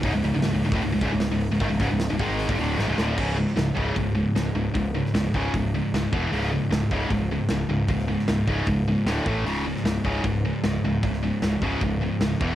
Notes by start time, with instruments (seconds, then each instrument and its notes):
0.03 picked electric bass C#1, distorted electric guitar C#2 G#2, kick, open hi-hat
0.13 picked electric bass C#1, distorted electric guitar C#2 G#2
0.22 picked electric bass C#1, distorted electric guitar C#2 G#2, open hi-hat
0.34 picked electric bass C#1, distorted electric guitar C#2 G#2
0.42 picked electric bass C#1, distorted electric guitar C#2 G#2, snare, open hi-hat
0.53 picked electric bass C#1, distorted electric guitar C#2 G#2
0.62 picked electric bass C#1, distorted electric guitar C#2 G#2, open hi-hat
0.71 picked electric bass D1, distorted electric guitar D2 A2, kick
0.81 picked electric bass C#1, distorted electric guitar C#2 G#2, open hi-hat
0.92 picked electric bass C#1, distorted electric guitar C#2 G#2
1.00 picked electric bass C#1, distorted electric guitar C#2 G#2, kick, open hi-hat
1.12 picked electric bass C#1, distorted electric guitar C#2 G#2
1.20 snare, open hi-hat
1.31 picked electric bass C#1, distorted electric guitar C#2 G#2
1.40 open hi-hat
1.51 picked electric bass C#1, distorted electric guitar C#2 G#2
1.59 picked electric bass G#1, distorted electric guitar G#2 D#3, kick, open hi-hat
1.70 picked electric bass C#1, distorted electric guitar C#2 G#2
1.79 picked electric bass C#1, distorted electric guitar C#2 G#2, kick, open hi-hat
1.91 picked electric bass C#1, distorted electric guitar C#2 G#2
1.99 snare, open hi-hat
2.10 picked electric bass C#1, distorted electric guitar C#2 G#2
2.19 picked electric bass G#1, distorted electric guitar G#2 D#3 G#3, kick, open hi-hat
2.38 open hi-hat
2.48 picked electric bass G1, distorted electric guitar G2 D3, kick
2.59 picked electric bass D1, distorted electric guitar D2 A2 D3, open hi-hat
2.78 picked electric bass G#1, distorted electric guitar G#2 D#3, snare
2.88 picked electric bass C#1, distorted electric guitar C#2 G#2
2.98 picked electric bass D1, distorted electric guitar D2 A2 D3, snare
3.17 picked electric bass C#1, distorted electric guitar C#2 G#2 C#3, kick, crash
3.28 snare
3.37 distorted electric guitar C#2 G#2
3.48 snare
3.56 picked electric bass C#1, distorted electric guitar C#2 G#2, snare, open hi-hat
3.75 picked electric bass C#1, distorted electric guitar C#2 G#2 C#3, kick
3.95 picked electric bass C#1, distorted electric guitar C#2 G#2, kick, open hi-hat
4.15 distorted electric guitar C#2 G#2
4.35 picked electric bass C#1, distorted electric guitar C#2 G#2, snare, open hi-hat
4.54 picked electric bass C#1, distorted electric guitar C#2 G#2
4.74 picked electric bass C#1, distorted electric guitar C#2 G#2, kick, open hi-hat
4.95 distorted electric guitar C#2 G#2
5.06 snare
5.14 picked electric bass C#1, distorted electric guitar C#2 G#2, snare, open hi-hat
5.34 picked electric bass C#1, distorted electric guitar C#2 G#2 C#3, kick
5.54 picked electric bass C#1, distorted electric guitar C#2 G#2, kick, open hi-hat
5.74 distorted electric guitar C#2 G#2
5.92 picked electric bass C#1, distorted electric guitar C#2 G#2, snare, open hi-hat
6.12 picked electric bass E1, distorted electric guitar E2 B2 E3, kick
6.31 picked electric bass C#1, distorted electric guitar C#2 G#2 C#3, open hi-hat
6.43 snare
6.52 distorted electric guitar C#2 G#2
6.71 picked electric bass C#1, distorted electric guitar C#2 G#2, snare, open hi-hat
6.91 picked electric bass C#1, distorted electric guitar C#2 G#2 C#3, kick
7.10 picked electric bass C#1, distorted electric guitar C#2 G#2, kick, open hi-hat
7.31 distorted electric guitar C#2 G#2
7.48 picked electric bass C#1, distorted electric guitar C#2 G#2, snare, open hi-hat
7.69 picked electric bass C#1, distorted electric guitar C#2 G#2
7.87 picked electric bass C#1, distorted electric guitar C#2 G#2, kick, open hi-hat
7.99 snare
8.08 distorted electric guitar C#2 G#2
8.19 snare
8.28 picked electric bass C#1, distorted electric guitar C#2 G#2, snare, open hi-hat
8.47 picked electric bass C#1, distorted electric guitar C#2 G#2 C#3, kick
8.66 picked electric bass C#1, distorted electric guitar C#2 G#2, kick, open hi-hat
8.88 distorted electric guitar C#2 G#2
9.05 picked electric bass D1, distorted electric guitar D2 A2 D3, snare, open hi-hat
9.26 picked electric bass A1, distorted electric guitar A2 E3 A3, kick
9.44 picked electric bass C#1, distorted electric guitar C#2 G#2 C#3, open hi-hat
9.67 distorted electric guitar C#2 G#2
9.76 snare
9.84 picked electric bass C#1, distorted electric guitar C#2 G#2, snare, open hi-hat
10.04 picked electric bass C#1, distorted electric guitar C#2 G#2 C#3, kick
10.23 picked electric bass C#1, distorted electric guitar C#2 G#2, kick, open hi-hat
10.45 distorted electric guitar C#2 G#2
10.63 picked electric bass C#1, distorted electric guitar C#2 G#2, snare, open hi-hat
10.84 picked electric bass C#1, distorted electric guitar C#2 G#2
11.03 picked electric bass C#1, distorted electric guitar C#2 G#2, kick, open hi-hat
11.13 snare
11.23 distorted electric guitar C#2 G#2
11.42 picked electric bass C#1, distorted electric guitar C#2 G#2, snare, open hi-hat
11.61 picked electric bass C#1, distorted electric guitar C#2 G#2 C#3, kick
11.80 picked electric bass C#1, distorted electric guitar C#2 G#2, kick, open hi-hat
12.01 distorted electric guitar C#2 G#2
12.20 picked electric bass C#1, distorted electric guitar C#2 G#2, snare, open hi-hat
12.40 picked electric bass E1, distorted electric guitar E2 B2 E3, kick